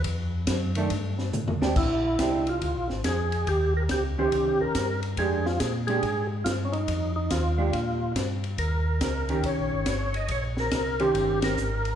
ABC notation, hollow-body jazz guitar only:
X:1
M:4/4
L:1/8
Q:"Swing" 1/4=141
K:Eb
V:1 name="Hollow-body jazz guitar"
z3 [E,=A,D] z3 [_A,DG] | z2 [A,DG] z4 z | z3 [E,_DGc]3 z2 | [A,DG] z2 [A,DG] z4 |
z3 [A,DG] z4 | z3 [E,_DG]3 z2 | z3 [E,_DGc]3 z2 |]